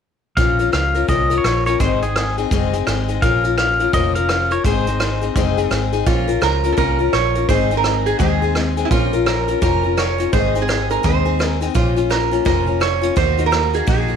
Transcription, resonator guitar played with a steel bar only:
6.07 6.43 F4 medium
6.43 6.74 A#4 medium
6.72 6.77 A4 medium
6.78 7.14 A#4 loud
7.13 7.48 C#5 medium
7.49 7.76 C5 medium
7.77 8.07 A#4 medium
8.06 8.18 G#4 medium
8.19 8.73 G#4 medium
8.85 8.90 E4 medium
8.91 9.28 F4 medium
9.26 9.61 A#4 medium
9.62 9.99 A#4 medium
9.97 10.32 C#5 medium
10.33 10.63 C5 medium
10.62 10.88 G#4 medium
10.91 11.03 A#4 medium
11.05 11.47 C5 medium
11.47 11.58 A#4 medium
11.75 12.12 F4 medium
12.10 12.45 A#4 medium
12.46 12.83 A#4 medium
12.81 13.17 C#5 medium
13.17 13.44 C5 medium
13.46 13.76 A#4 medium
13.74 13.87 G#4 medium
13.88 14.16 G#4 medium

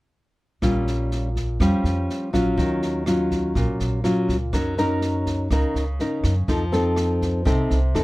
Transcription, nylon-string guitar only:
0.62 1.58 A#2 soft
0.62 1.28 G3 soft
0.62 1.28 C#4 soft
0.62 1.28 F4 soft
1.60 2.55 F3 medium
1.60 2.30 G3 soft
1.60 2.30 C#4 soft
1.60 2.30 F4 soft
2.33 3.03 F#3 soft
2.33 3.03 C#4 medium
2.33 3.03 F4 medium
2.57 3.53 D#3 soft
3.07 4.01 F#3 soft
3.07 4.01 C#4 soft
3.07 4.01 F4 medium
3.56 4.51 A#2 soft
4.04 4.36 F#3 soft
4.04 4.36 C#4 soft
4.04 4.36 F4 medium
4.53 5.48 F#3 soft
4.53 4.74 C#4 soft
4.53 4.74 D#4 soft
4.53 4.74 A#4 soft
4.78 5.47 C#4 medium
4.78 5.47 D#4 medium
4.78 5.47 A#4 medium
5.52 6.47 C#3 medium
5.52 5.83 C#4 soft
5.52 5.83 D#4 soft
5.52 5.83 A#4 medium
6.00 6.33 C#4 soft
6.00 6.33 D#4 medium
6.00 6.33 A#4 medium
6.48 7.44 F3 soft
6.48 6.63 C4 soft
6.48 6.63 D#4 soft
6.48 6.63 A4 soft
6.72 7.42 C4 medium
6.72 7.42 D#4 medium
6.72 7.42 A4 medium
7.45 8.04 C3 medium
7.45 7.77 C4 soft
7.45 7.78 D#4 soft
7.45 7.78 A4 soft
7.94 8.04 C4 soft
7.94 8.04 D#4 soft
7.94 8.04 A4 medium

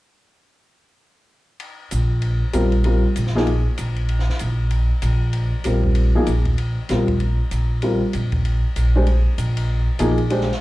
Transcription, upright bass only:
1.92 2.41 A#1 medium
2.54 3.03 A#1 medium
3.16 3.65 A#1 medium
3.79 4.27 A#1 medium
4.41 4.90 A#1 medium
5.03 5.51 A#1 medium
5.66 6.14 A#1 medium
6.27 6.76 A#1 medium
6.90 7.38 A#1 medium
7.51 8.00 A#1 medium
8.14 8.63 A#1 medium
8.76 9.25 A#1 medium
9.38 9.86 A#1 medium
10.00 10.48 A#1 medium

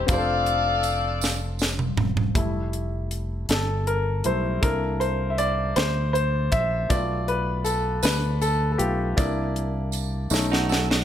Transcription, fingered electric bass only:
0.09 1.94 F1 loud
1.97 2.32 E1 medium
2.35 3.45 F1 medium
3.49 4.21 G1 medium
4.25 4.60 B1 medium
4.63 5.73 C2 loud
5.77 6.49 D2 medium
6.53 6.87 A#1 medium
6.90 8.00 B1 loud
8.03 8.76 D2 medium
8.80 9.15 B1 loud
9.18 10.28 C2 loud
10.31 11.03 B1 loud

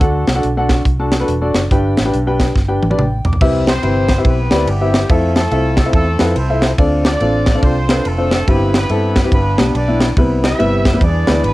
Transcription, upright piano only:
0.00 0.66 D3 medium
0.00 0.23 D4 medium
0.00 0.23 F#4 medium
0.00 0.23 A4 medium
0.00 0.24 F#5 medium
0.00 0.26 E6 medium
0.35 0.45 D4 medium
0.35 0.45 F#4 medium
0.35 0.45 A4 medium
0.35 0.45 F#5 medium
0.57 0.81 D4 medium
0.57 0.81 F#4 medium
0.57 0.81 A4 medium
0.57 0.81 F#5 medium
1.00 1.14 D4 medium
1.00 1.14 F#4 medium
1.00 1.14 A4 medium
1.00 1.14 A5 medium
1.20 1.31 D4 medium
1.20 1.31 F#4 medium
1.20 1.30 A4 medium
1.20 1.30 B4 medium
1.41 1.61 D4 medium
1.41 1.61 F#4 medium
1.41 1.61 A4 medium
1.41 1.61 D5 medium
1.71 2.36 G2 medium
1.71 1.94 D4 medium
1.71 1.94 G4 medium
1.71 1.94 B4 medium
1.71 1.94 G5 medium
2.05 2.15 D4 medium
2.05 2.15 G4 medium
2.05 2.15 B4 medium
2.05 2.15 G5 medium
2.27 2.50 D4 medium
2.27 2.50 G4 medium
2.27 2.51 B4 medium
2.27 2.51 G5 medium
2.68 2.83 D4 medium
2.68 2.83 G4 medium
2.68 2.83 B4 medium
2.68 2.83 G5 medium
2.90 3.00 D4 medium
2.90 3.01 G4 medium
2.90 3.00 B4 medium
2.90 3.00 D5 medium
2.98 3.23 G5 medium
3.25 3.65 D6 medium
3.41 4.06 C3 medium
3.41 3.70 C4 medium
3.41 3.70 E4 medium
3.41 3.70 G4 medium
3.41 3.70 B4 medium
3.41 3.70 E5 loud
3.82 4.06 C4 medium
3.82 4.06 E4 medium
3.82 4.06 G4 medium
3.82 4.05 B4 medium
3.82 4.06 G5 medium
4.18 4.35 C4 medium
4.18 4.35 E4 medium
4.18 4.35 G4 medium
4.18 4.35 B4 medium
4.18 4.35 E5 medium
4.52 4.66 C4 medium
4.52 4.66 E4 medium
4.52 4.66 G4 medium
4.52 4.66 B4 medium
4.52 4.66 D5 medium
4.81 5.00 C4 medium
4.81 5.00 E4 medium
4.81 5.00 G4 medium
4.81 5.00 B4 medium
4.81 5.00 E5 medium
5.09 5.38 C4 medium
5.09 5.39 E4 medium
5.09 5.39 F4 medium
5.09 5.38 A4 medium
5.09 5.39 E5 medium
5.52 5.75 C4 medium
5.52 5.75 E4 medium
5.52 5.75 F4 medium
5.52 5.75 A4 medium
5.52 5.75 E5 medium
5.85 6.04 C4 medium
5.85 6.03 E4 medium
5.85 6.04 F4 medium
5.85 6.03 A4 medium
5.85 6.04 E5 medium
6.20 6.34 C4 medium
6.20 6.34 E4 medium
6.20 6.34 F4 medium
6.20 6.34 A4 medium
6.20 6.34 B4 medium
6.50 6.69 C4 medium
6.50 6.69 E4 medium
6.50 6.69 F4 medium
6.50 6.69 A4 medium
6.50 6.69 E5 medium
6.79 7.43 D3 medium
6.79 7.08 C4 medium
6.79 7.07 D4 medium
6.79 7.07 F4 medium
6.79 7.07 A4 medium
6.79 7.08 D5 loud
7.21 7.44 C4 medium
7.21 7.44 D4 medium
7.21 7.44 F4 medium
7.21 7.44 A4 medium
7.21 7.44 D5 medium
7.55 7.73 C4 medium
7.55 7.73 D4 medium
7.55 7.73 F4 medium
7.55 7.73 A4 medium
7.55 7.73 D5 medium
7.90 8.04 C4 medium
7.90 8.04 D4 medium
7.90 8.04 F4 medium
7.90 8.04 A4 medium
7.90 8.04 B4 medium
8.18 8.37 C4 medium
8.18 8.37 D4 medium
8.18 8.37 F4 medium
8.18 8.37 A4 medium
8.18 8.37 C5 medium
8.48 9.13 G2 medium
8.48 8.77 C4 medium
8.48 8.77 E4 medium
8.48 8.77 G4 medium
8.90 9.13 C4 medium
8.90 9.13 E4 medium
8.90 9.13 A4 medium
9.24 9.32 C4 medium
9.24 9.32 E4 medium
9.24 9.32 G4 medium
9.33 9.97 G2 medium
9.59 9.73 B3 medium
9.59 9.73 D4 medium
9.59 9.73 G4 medium
9.88 10.07 B3 medium
9.88 10.07 D4 medium
9.88 10.07 E4 medium
10.18 10.82 C3 medium
10.18 10.46 G3 medium
10.18 10.46 B3 medium
10.18 10.46 C4 medium
10.18 10.46 E4 medium
10.18 10.46 B4 medium
10.59 10.82 G3 medium
10.59 10.82 B3 medium
10.59 10.82 C4 medium
10.59 10.82 E4 medium
10.59 10.82 B4 medium
10.93 11.01 G3 medium
10.93 11.01 B3 medium
10.93 11.01 C4 medium
10.93 11.01 E4 medium
10.93 11.01 B4 medium
11.01 11.54 E3 medium
11.27 11.42 G#3 medium
11.27 11.41 B3 medium
11.27 11.41 D4 medium
11.27 11.41 E4 medium
11.27 11.41 B4 medium

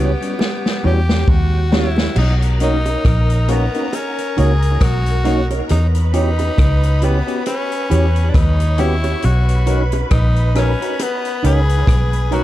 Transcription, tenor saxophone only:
0.00 0.86 B3 medium
0.87 1.32 G4 loud
1.30 1.76 F#4 loud
1.75 2.18 E4 loud
2.18 2.34 D#4 loud
2.64 3.53 D#4 loud
3.52 3.96 B3 loud
3.95 4.38 C#4 loud
4.40 4.85 G#4 loud
4.84 5.46 F#4 loud
5.71 5.87 D#4 medium
6.14 7.06 D#4 loud
7.04 7.46 B3 loud
7.47 8.31 C#4 loud
8.29 8.37 D4 medium
8.36 8.82 D#4 loud
8.80 9.26 E4 loud
9.24 9.88 F#4 loud
10.13 10.53 D#4 loud
10.58 11.04 C#4 loud
11.03 11.45 B3 loud
11.46 12.36 G#4 loud
12.35 12.44 F#4 loud

